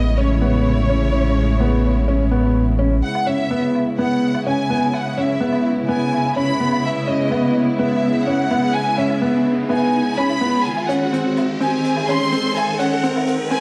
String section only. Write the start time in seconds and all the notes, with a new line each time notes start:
Already playing: C#3 G#3 A3 E4
3.03 C#3 G#3 B3 E4
10.64 D#3 C4